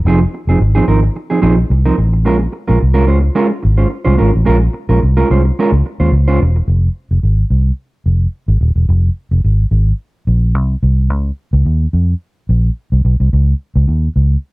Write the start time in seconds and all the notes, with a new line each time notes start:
0.05 F1 F3 C4 D#4 G#4
0.21 muted clean electric guitar stroke
0.34 muted clean electric guitar stroke
0.47 F1 F3 C4 D#4 G#4
0.60 G#1, muted clean electric guitar stroke
0.75 F3 C4 D#4 G#4
0.88 G#1 F3 C4 D#4 A#4
1.03 muted clean electric guitar stroke
1.16 muted clean electric guitar stroke
1.30 F3 C4 D#4 G#4
1.42 A#1 F3 C4 D#4 G#4
1.58 muted clean electric guitar stroke
1.70 C2, muted clean electric guitar stroke
1.85 F3 C4 D#4 A#4
1.98 A1, muted clean electric guitar stroke
2.13 muted clean electric guitar stroke
2.25 A#1 G#3 C#4 F4 A#4
2.39 muted clean electric guitar stroke
2.52 muted clean electric guitar stroke
2.68 A#1 G#3 C#4 F4 A#4
2.82 C2
2.94 G#3 C#4 F4 A#4
3.07 C#2 G#3 C#4 F4 C5
3.21 muted clean electric guitar stroke
3.35 G#3 C#4 F4 A#4
3.50 muted clean electric guitar stroke
3.63 G#1, muted clean electric guitar stroke
3.77 G#3 C#4 F4 C5
3.90 muted clean electric guitar stroke
4.05 C2 G#3 C#4 F4 C5
4.17 G#1 G#3 C#4 F4 A#4
4.33 A1, muted clean electric guitar stroke
4.45 A#1 G#3 C#4 F4 A#4
4.60 muted clean electric guitar stroke
4.73 muted clean electric guitar stroke
4.89 A#1 G#3 C#4 F4 A#4
5.02 C2, muted clean electric guitar stroke
5.17 G#3 C#4 F4 A#4
5.30 C2 G#3 C#4 F4 C5
5.45 muted clean electric guitar stroke
5.59 G#3 C#4 F4 A#4
5.72 C#2, muted clean electric guitar stroke
5.86 muted clean electric guitar stroke
6.00 D#2 G#3 C#4 F4 C5
6.12 C#2, muted clean electric guitar stroke
6.28 G#3 C#4 F4 C5
6.40 E1, muted clean electric guitar stroke
6.56 muted clean electric guitar stroke
6.68 F1
7.11 F1
7.23 G#1
7.50 C2
8.06 F1
8.48 G#1
8.61 D#1
8.76 E1
8.89 F1
9.31 F1
9.44 G#1
9.71 G#1
10.27 A#1
10.55 C2
10.83 C2
11.10 C#2
11.53 C#2
11.65 D#2
11.93 F2
12.49 A#1
12.92 C2
13.05 B1
13.20 C2
13.33 C#2
13.76 C#2
13.88 D#2
14.16 C#2